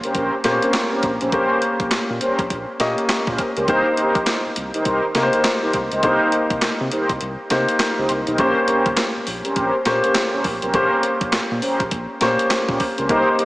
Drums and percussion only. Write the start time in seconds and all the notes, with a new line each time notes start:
0.04 closed hi-hat
0.15 kick, closed hi-hat
0.44 snare, closed hi-hat
0.62 closed hi-hat
0.73 snare, clap, closed hi-hat
1.03 kick, closed hi-hat
1.21 closed hi-hat
1.32 kick, closed hi-hat
1.62 closed hi-hat
1.80 kick, closed hi-hat
1.91 snare, clap, closed hi-hat
2.21 closed hi-hat
2.39 kick, closed hi-hat
2.50 kick, closed hi-hat
2.80 snare, closed hi-hat
2.98 closed hi-hat
3.09 snare, clap, closed hi-hat
3.27 kick
3.38 kick, closed hi-hat
3.57 closed hi-hat
3.68 kick, closed hi-hat
3.97 closed hi-hat
4.15 kick, closed hi-hat
4.27 snare, clap, closed hi-hat
4.56 closed hi-hat
4.74 closed hi-hat
4.85 kick, closed hi-hat
5.15 snare, closed hi-hat
5.33 closed hi-hat
5.44 snare, clap, closed hi-hat
5.73 kick, closed hi-hat
5.92 closed hi-hat
6.03 kick, closed hi-hat
6.32 closed hi-hat
6.50 kick, closed hi-hat
6.62 snare, clap, closed hi-hat
6.92 closed hi-hat
7.09 kick, closed hi-hat
7.21 closed hi-hat
7.50 snare, closed hi-hat
7.69 closed hi-hat
7.79 snare, clap, closed hi-hat
8.09 closed hi-hat
8.27 closed hi-hat
8.38 kick, closed hi-hat
8.68 closed hi-hat
8.86 kick, closed hi-hat
8.97 snare, clap, closed hi-hat
9.27 open hi-hat
9.45 closed hi-hat
9.56 kick, closed hi-hat
9.85 snare, closed hi-hat
10.04 closed hi-hat
10.15 snare, clap, closed hi-hat
10.44 kick, open hi-hat
10.62 closed hi-hat
10.74 kick, closed hi-hat
11.03 closed hi-hat
11.21 kick, closed hi-hat
11.32 snare, clap, closed hi-hat
11.62 open hi-hat
11.80 kick, closed hi-hat
11.91 kick, closed hi-hat
12.21 snare, closed hi-hat
12.39 closed hi-hat
12.50 snare, clap, closed hi-hat
12.69 kick
12.80 kick, open hi-hat
12.98 closed hi-hat
13.09 kick, closed hi-hat
13.39 closed hi-hat